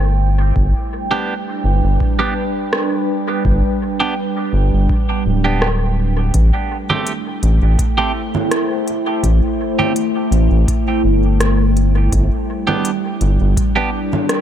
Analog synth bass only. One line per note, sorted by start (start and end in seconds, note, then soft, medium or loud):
0.00 0.52 G1 medium
0.56 0.73 G1 loud
1.64 1.81 G1 medium
1.84 1.98 G1 loud
3.45 3.62 G1 loud
4.53 4.70 G1 medium
4.73 4.88 G1 loud
5.26 6.31 D1 medium
6.34 6.51 A1 loud
7.43 7.60 A1 medium
7.62 7.77 A1 medium
9.23 9.41 A1 loud
10.31 10.49 A1 medium
10.51 10.66 A1 loud
11.04 12.09 G1 medium
12.12 12.30 G1 loud
13.21 13.38 G1 medium
13.41 13.55 G1 medium